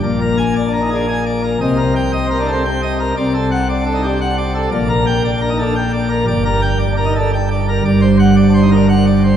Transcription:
<<
  \new Staff \with { instrumentName = "Pipe organ" } { \time 3/4 \key g \minor \tempo 4 = 115 << { \tuplet 3/2 { d''8 bes'8 aes''8 d''8 bes'8 aes'8 aes''8 d''8 bes'8 } | \tuplet 3/2 { ees''8 bes'8 g''8 ees''8 bes'8 a'8 g''8 ees''8 bes'8 } | \tuplet 3/2 { d''8 a'8 fis''8 d''8 a'8 g'8 fis''8 d''8 a'8 } | \tuplet 3/2 { d''8 bes'8 g''8 d''8 bes'8 a'8 g''8 d''8 bes'8 } |
\tuplet 3/2 { d''8 bes'8 g''8 d''8 bes'8 a'8 g''8 d''8 bes'8 } | \tuplet 3/2 { d''8 c''8 fis''8 d''8 c''8 bes'8 fis''8 d''8 c''8 } | } \\ { bes,4~ bes,16 d'16 ees'16 d'16 r4 | c4~ c16 c'16 d'16 c'16 r4 | c4~ c16 d'16 ees'16 d'16 r4 | bes,4~ bes,16 d'16 ees'16 d'16 r4 |
g,4~ g,16 d'16 ees'16 d'16 r4 | g,4~ g,16 d'16 ees'16 d'16 r4 | } >> }
  \new Staff \with { instrumentName = "Pipe organ" } { \clef bass \time 3/4 \key g \minor bes,,2. | c,2. | c,2. | bes,,2. |
g,,2. | g,,2. | }
>>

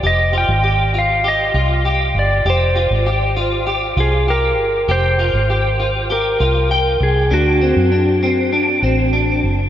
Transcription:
<<
  \new Staff \with { instrumentName = "Electric slide guitar" } { \time 4/4 \key f \dorian \tempo 4 = 99 ees''8 g''4 f''8 ees''4. d''8 | c''2~ c''8 aes'8 bes'4 | c''2 bes'4. aes'8 | fis'2. r4 | }
  \new Staff \with { instrumentName = "Clean electric guitar" } { \time 4/4 \key f \dorian g'8 f'8 g'8 f'8 g'8 f'8 g'4 | g'8 f'8 g'8 f'8 g'8 f'8 g'4 | g'8 f'8 g'8 f'8 g'8 f'8 g''4 | d'8 c'8 d'8 c'8 d'8 c'8 d'4 | }
  \new Staff \with { instrumentName = "Fingered electric bass" } { \clef bass \time 4/4 \key f \dorian f,,8. aes,,4.~ aes,,16 c,4 g,,8 | f,,8. aes,,4.~ aes,,16 c,4 g,,8 | f,,8. aes,,4.~ aes,,16 c,4 c,8 | d,8. fis,4.~ fis,16 a,,4 fis,,8 | }
>>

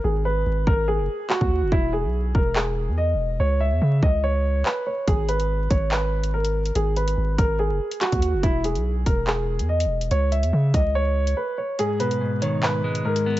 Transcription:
<<
  \new Staff \with { instrumentName = "Grand piano" } { \time 4/4 \key gis \minor \tempo 4 = 143 gis'8 b'4 ais'8 gis'4 fis'4 | e'8 gis'4 ais'8 gis'4 dis''4 | cis''8 e''4 dis''8 cis''4 b'8 cis''8 | gis'8 b'4 cis''8 b'4 ais'4 |
gis'8 b'4 ais'8 gis'4 fis'4 | e'8 gis'4 ais'8 gis'4 dis''4 | cis''8 e''4 dis''8 cis''4 b'8 cis''8 | gis'8 b'4 cis''8 b'4 ais'4 | }
  \new Staff \with { instrumentName = "Clean electric guitar" } { \clef bass \time 4/4 \key gis \minor r1 | r1 | r1 | r1 |
r1 | r1 | r1 | gis,8 b,8 gis,8 dis8 gis,8 gis8 gis,8 b8 | }
  \new Staff \with { instrumentName = "808-style bass" } { \clef bass \time 4/4 \key gis \minor gis,,4 gis,,8 gis,,8. fis,,16 r8. dis,8 fis,,16 | e,,8. b,,8. e,,4~ e,,16 e,8~ e,32 e,,8~ e,,32 | cis,8. e,16 cis8 cis,4. r4 | gis,,4. gis,,2~ gis,,8 |
gis,,4 gis,,8 gis,,8. fis,,16 r8. dis,8 fis,,16 | e,,8. b,,8. e,,4~ e,,16 e,8~ e,32 e,,8~ e,,32 | cis,8. e,16 cis8 cis,4. r4 | r1 | }
  \new DrumStaff \with { instrumentName = "Drums" } \drummode { \time 4/4 r4 r8 bd8 r4 hc16 bd8. | bd4 r8 bd8 hc4 r4 | r4 r8 bd8 r4 hc4 | <hh bd>8 hh16 hh16 r8 <hh bd>8 hc8. hh16 r16 hh8 hh16 |
hh8 hh16 hh16 r8 <hh bd>8 r8. hh16 <hc hh>16 <hh bd>16 hh8 | <hh bd>8 hh16 hh16 r8 <hh bd>8 hc8. hh16 r16 hh8 hh16 | hh8 hh16 hh16 r8 <hh bd>8 r8. hh16 r4 | hh8 hh16 hh16 r8 hh8 hc8. hh16 r16 hh8. | }
>>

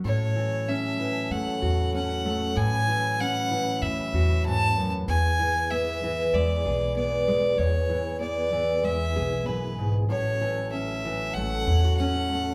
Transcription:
<<
  \new Staff \with { instrumentName = "Fiddle" } { \time 4/4 \key a \major \tempo 4 = 96 cis''4 e''4 fis''4 fis''4 | gis''4 fis''4 e''4 a''8. r16 | gis''4 e''4 d''4 d''4 | cis''4 d''4 e''4 b'8. r16 |
cis''4 e''4 fis''4 fis''4 | }
  \new Staff \with { instrumentName = "Tonewheel organ" } { \time 4/4 \key a \major a'1 | b'1 | gis'1~ | gis'1 |
a'1 | }
  \new Staff \with { instrumentName = "Tonewheel organ" } { \clef bass \time 4/4 \key a \major <fis cis'>1~ | <fis cis'>1 | <e b>1~ | <e b>1 |
<fis cis'>1 | }
  \new Staff \with { instrumentName = "Steel-string acoustic guitar" } { \clef bass \time 4/4 \key a \major << { r4 cis'4 a8 fis'8 cis'8 a8 | r4 cis'4. fis'4. | r4 b4 gis8 gis'8 b8 gis8 | r4 b4 gis8 gis'4. |
r4 cis'4 a8 e'16 fis'16 cis'8 a8 | } \\ { a,8 e4 e2~ e8 | a,8 e4 e4. gis,8 fis,8 | e,8 e4 e2~ e8 | e,8 e4 e4. fis,8 gis,8 |
a,8 e4 e2~ e8 | } >> }
  \new Staff \with { instrumentName = "Upright bass" } { \clef bass \time 4/4 \key a \major a,2 a,8 e,4. | a,2 a,8 e,4. | e,2 e,8 b,,4. | e,2 e,8 b,,4. |
a,,2 a,,8 e,4. | }
>>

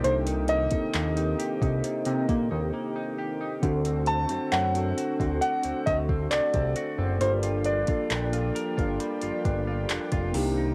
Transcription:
<<
  \new Staff \with { instrumentName = "Grand piano" } { \time 4/4 \key g \minor \tempo 4 = 67 c''8 ees''2. r8 | r8 a''8 fis''4 fis''8 ees''8 d''4 | c''8 d''2. r8 | }
  \new Staff \with { instrumentName = "Tine electric piano" } { \time 4/4 \key g \minor <bes d' ees' a'>8 r16 <bes c' ees' a'>16 r16 <bes c' ees' g'>4. r4 r16 | <c' d' fis' a'>8 r16 <c' d' fis' c''>16 r16 <c' d' fis' a'>4. r4 r16 | <bes d' f' a'>8 r16 <bes d' f' a'>16 r16 <bes d' f' a'>4. r8. <bes d' ees' g'>8 | }
  \new Staff \with { instrumentName = "Clean electric guitar" } { \time 4/4 \key g \minor <c bes ees' g'>16 ees'16 bes16 ees'16 bes16 ees'16 g'16 ees'16 c16 ees'16 bes16 ees'16 bes16 ees'16 g'16 ees'16 | d16 c'16 a16 c'16 a16 c'16 fis'16 c'16 d16 c'16 a16 c'16 a16 c'16 fis'16 c'16 | g16 f'16 d'16 f'16 d'16 f'16 bes'16 f'16 g16 f'16 d'16 f'16 d'16 f'16 c16 ees'16 | }
  \new Staff \with { instrumentName = "Analog synth pad" } { \time 4/4 \key g \minor << { <bes g'>1 | <a fis'>1 | <bes g'>1 | } \\ { <ees c'>1 | <d c'>1 | <f d'>2.~ <f d'>8 <ees c'>8 | } >> }
  \new Staff \with { instrumentName = "Analog synth bass" } { \clef bass \time 4/4 \key g \minor c,8. ees,16 ees,8 r16 c,16 r16 c16 bes,16 ees,16 r4 | d,8. fis,16 fis,8 r16 d,16 r16 d,16 d,8 c,16 c,16 r16 fis,,16 | g,,8. bes,,16 bes,,8 r16 g,,16 r16 g,,16 g,,8 f,,16 f,,16 c,8 | }
  \new DrumStaff \with { instrumentName = "Drums" } \drummode { \time 4/4 hh16 hh16 hh16 <hh bd>16 <hc hh>16 hh16 hh16 <hh bd>16 hh16 hh16 <hh bd>8 r4 | <hh bd>16 hh16 hh16 hh16 <hc hh>16 hh16 hh16 <hh bd>16 hh16 hh16 <hh bd>16 bd16 <hc hh>16 <hh bd>16 hh8 | hh16 hh16 hh16 <hh bd>16 <hc hh>16 hh16 hh16 <hh bd>16 hh16 hh16 <hh bd>8 <hc hh>16 <hh bd>16 hho8 | }
>>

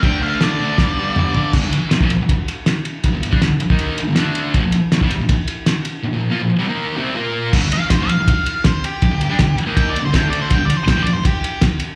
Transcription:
<<
  \new Staff \with { instrumentName = "Lead electric guitar" } { \time 4/4 \key g \minor \tempo 4 = 160 g''8 f''8 d''2. | r1 | r1 | r1 |
r1 | r8 f''8 c''8 f''4. c''8 g'8~ | g'4. r8 \tuplet 3/2 { g''8 d''8 c''8 g''8 d''8 c''8 } | \tuplet 3/2 { g''8 d''8 c''8 g''8 d''8 c''8 } g'4 r4 | }
  \new Staff \with { instrumentName = "Distorted electric guitar" } { \clef bass \time 4/4 \key g \minor <d a d'>8 <d a d'>8 <d a d'>8 <d a d'>8 <g, d g>8 <g, d g>8 <g, d g>8 <g, d g>8 | <g, d>16 <g, d>16 r8. <bes, f>16 r2 r8 | r16 <g, d>8 <g d'>16 <g, d>16 r8 <ees bes ees'>8. r16 <g, d>16 <d a d'>4 | <bes, f>16 <bes, f>16 r8. <c g>16 r2 r8 |
r16 <bes, f>8 <bes f'>16 <bes, f>16 r16 <c g>16 <ees bes ees'>8. <c g c'>8 <bes f' bes'>4 | <g, d>16 <g, d>16 r8. <bes, f>16 r2 r8 | r16 <g, d>8 <g d'>16 <g, d>16 r8 <ees bes ees'>8. r16 <g, d>16 <d a d'>4 | <g, d>16 <g, d>16 r8. <bes, f>16 r2 r8 | }
  \new DrumStaff \with { instrumentName = "Drums" } \drummode { \time 4/4 <cymc bd>4 <cymc sn>4 <bd sn>4 toml8 tomfh8 | <cymc bd>8 cymr8 <cymr sn>16 bd16 cymr8 <bd cymr>8 cymr8 <cymr sn>8 cymr8 | <bd cymr>8 cymr16 bd16 <cymr sn>8 cymr16 bd16 cymr8 cymr8 <cymr sn>8 cymr8 | <bd cymr>8 cymr8 <cymr sn>16 bd16 cymr8 <bd cymr>8 cymr8 <cymr sn>8 cymr8 |
r4 r4 r4 r4 | <cymc bd>8 cymr8 <bd cymr sn>8 cymr8 <bd cymr>8 cymr8 <bd cymr sn>8 cymr8 | <bd cymr>8 cymr8 <bd cymr sn>8 cymr8 <bd cymr>8 cymr8 <bd cymr sn>8 cymr8 | <bd cymr>8 cymr8 <bd cymr sn>8 cymr8 <bd cymr>8 cymr8 <bd cymr sn>8 cymr8 | }
>>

